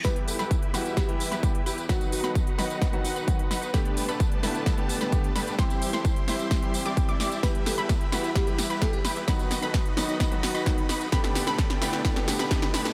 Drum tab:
HH |xxoxxxoxxxoxxxox|xxo-xxoxxxoxxxox|xxoxxxoxxxoxxxox|xxo-xxoxxxo-xxox|
TB |x-xxx-xxx-xxx-xx|xxxxx-xxx-xxx-xx|x-xxx-xxx-xxx-xx|xxxxx-xxx-xxx-xx|
SD |o--o--o-o--o----|o--o--o-o-----o-|o-----o-o--o--o-|o--o--o-o-----o-|
BD |o---o---o---o---|o---o---o---o---|o---o---o---o---|o---o---o---o---|

HH |xxoxxxoxxxoxxxox|xxoxxxoxxxoxxxox|xxoxxxoxxxoxxxox|
TB |x-x-x-xxx-x-x-xx|xxxxx-xxx-xxx-xx|x-xxx-xxx-xxx-xx|
SD |o-o-o-o-o-o-o-o-|o-o-o-o-o-o-o-o-|oooooooooooooooo|
BD |o---o---o---o---|o---o---o---o---|o---o---o---o---|